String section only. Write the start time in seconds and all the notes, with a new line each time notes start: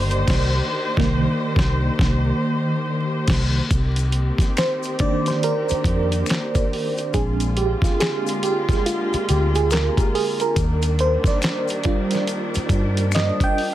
Already playing: D#3 A#3 G4 C5
3.71 D#3 A#3 C4 G4
7.14 D3 G#3 F4
10.56 D#3 G3 D4